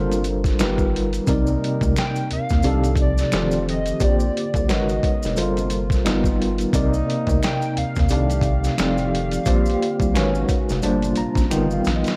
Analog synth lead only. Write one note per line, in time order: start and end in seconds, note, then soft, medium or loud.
1.99 2.29 G5 loud
2.33 2.95 F5 loud
3.01 3.64 D5 loud
3.70 4.06 D#5 loud
4.04 4.73 D5 medium
4.72 5.72 D#5 medium
7.44 7.80 G5 loud
7.78 8.11 F5 loud
8.13 11.48 F5 loud